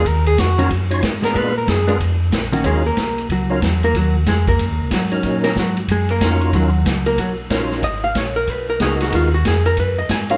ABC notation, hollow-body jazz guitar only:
X:1
M:4/4
L:1/8
Q:"Swing" 1/4=185
K:Ebm
V:1 name="Hollow-body jazz guitar"
z3 [E,B,DG] z3 [A,C=D] | z3 [A,C=D] z3 [E,B,_DG] | [A,A] [B,B]3 [G,G]3 [B,B] | [G,G] z [A,A] [B,B]3 [G,G]2- |
[G,G] [B,B] [G,G] z [A,A] [B,B]3 | [G,G]3 [B,B] [G,G] z3 | e f d B c B A G | F G A B c e a f |]